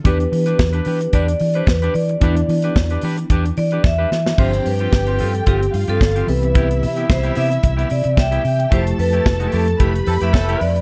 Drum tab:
CC |----------------|----------------|x---------------|----------------|
HH |xxox-xoxxxox-xox|xxox-xoxxxox----|-xox-xoxxxox-xox|xxox-xoxxxox-xox|
SD |----o-------o---|----o-------o-oo|----o-------o---|----o-------o---|
BD |o---o---o---o---|o---o---o---o---|o---o---o---o---|o---o---o---o---|

CC |----------------|
HH |xxox-xoxxxox-xox|
SD |----o-------o---|
BD |o---o---o---o---|